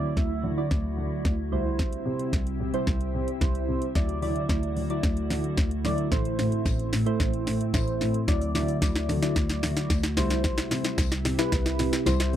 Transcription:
Already playing: D3 F#3 A3 E4 F#4 D5
0.17 D2 F#3 E4 E5, kick, snare
0.44 D3
0.57 F#3 E4 D5
0.71 D2, kick, snare
0.98 D3
1.25 D2, kick, snare
1.52 C2 C3 G3 C4 E4 G4 C5
1.79 kick, snare
1.93 closed hi-hat
2.06 C3
2.19 closed hi-hat
2.33 C2, kick, snare
2.47 closed hi-hat
2.60 C3
2.74 G3 E4 C5, closed hi-hat
2.87 C2, kick, snare
3.01 closed hi-hat
3.14 C3
3.28 closed hi-hat
3.41 C2 G3 E4 C5, kick, snare
3.55 closed hi-hat
3.68 C3
3.82 closed hi-hat
3.95 D2 D3 F#3 A3 E4 F#4 D5, kick, snare
4.09 closed hi-hat
4.22 D3 F#3 E4 D5, open hi-hat
4.36 closed hi-hat
4.49 D2 F#3 E4 D5, kick, snare
4.63 closed hi-hat
4.77 D3, open hi-hat
4.90 F#3 E4 D5, closed hi-hat
5.03 D2, kick, snare
5.17 closed hi-hat
5.30 D3, snare, open hi-hat
5.44 closed hi-hat
5.57 D2, kick, snare
5.71 closed hi-hat
5.85 D3 F#3 E4 D5, snare, open hi-hat
5.98 closed hi-hat
6.11 A1 A3 C4 E4 C5, kick, snare
6.25 closed hi-hat
6.39 A2, snare, open hi-hat
6.52 closed hi-hat
6.65 A1, kick, snare, tambourine
6.79 closed hi-hat
6.93 A2, snare, open hi-hat
7.06 A3 E4 C5, closed hi-hat
7.20 A1, kick, snare
7.33 closed hi-hat
7.47 A2, snare, open hi-hat
7.61 closed hi-hat
7.73 A1 A3 E4 C5, kick, snare, tambourine
7.88 closed hi-hat
8.01 A2, snare, open hi-hat
8.14 closed hi-hat
8.28 D2 D3 F#3 E4 F#4 D5, kick, snare, shaker
8.42 closed hi-hat, shaker
8.55 D3 F#3 E4 D5, snare, open hi-hat, shaker
8.68 closed hi-hat, shaker
8.81 D2 F#3 E4 D5, kick, snare, tambourine, shaker
8.96 snare, closed hi-hat, shaker
9.09 D3, snare, open hi-hat, shaker
9.22 F#3 E4 D5, snare, closed hi-hat, shaker
9.36 D2, kick, snare, shaker
9.49 snare, closed hi-hat, shaker
9.63 D3, snare, open hi-hat, shaker
9.77 snare, closed hi-hat, shaker
9.90 D2, kick, snare, tambourine, shaker
10.03 snare, closed hi-hat, shaker
10.17 C2 C3 G3 C4 E4 G4 C5, snare, open hi-hat, shaker
10.30 snare, closed hi-hat, shaker
10.44 kick, snare, shaker
10.58 snare, closed hi-hat, shaker
10.71 C3, snare, open hi-hat, shaker
10.84 snare, closed hi-hat, shaker
10.98 C2, kick, snare, tambourine, shaker
11.12 snare, closed hi-hat, shaker
11.25 C3, snare, open hi-hat, shaker
11.38 G3 E4 B4, snare, closed hi-hat, shaker
11.52 C2, kick, snare, shaker
11.66 snare, closed hi-hat, shaker
11.79 C3, snare, open hi-hat, shaker
11.93 snare, closed hi-hat, shaker
12.06 C2 G3 E4 C5, snare, tambourine, shaker
12.20 snare, closed hi-hat, shaker

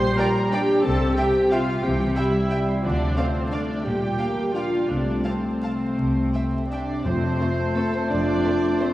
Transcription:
Already playing: A#1 A#2 G3 D4 G4 A#4 C5 D5 A#5 C6
0.02 A#3
0.17 D4 A#4 D5 G5 A#5
0.35 G4
0.51 D4 G4 D5 G5
0.69 G4
0.83 C2 C3 C4 A4 A5
1.01 G3
1.17 E4 G4 E5 G5
1.35 G4
1.51 F4 E5 F5 G5
1.69 C5
1.84 C2 C3 E3 G4 G5
2.00 G3
2.16 G3 E4 E5 G5
2.35 G4
2.51 E5 G5
2.68 C5
2.83 D2 D3 F3 D4 D5
3.00 A3
3.17 A3 C4 F4 C5 D5 F5
3.34 A4
3.51 A3 D4 D5 F5
3.69 D5
3.85 A#1 A#2 G3 G4 G5
4.02 F3
4.19 A#3 D4 F5 G5
4.37 F4
4.54 D4 F4 D5 F5 G5
4.72 A#4
4.89 C2 C3 A3 D4 D5
5.07 A3
5.25 C4 F4 C5 F5 A5
5.44 A4
5.62 F5 A5
5.81 C5
5.98 C2 C3
6.16 G3
6.34 E4 E5 G5
6.53 G4
6.69 D4 D5 E5 G5
6.89 C5
7.04 F1 F2 A3 C4 F4 C5 A5
7.23 A3
7.41 A3 C4
7.60 A4
7.76 A3 A4 C5
7.93 C4 A4 C5
8.10 F1 F2 D4 D5
8.28 A3
8.45 A3 C4
8.64 A4
8.80 A3 C4 C5

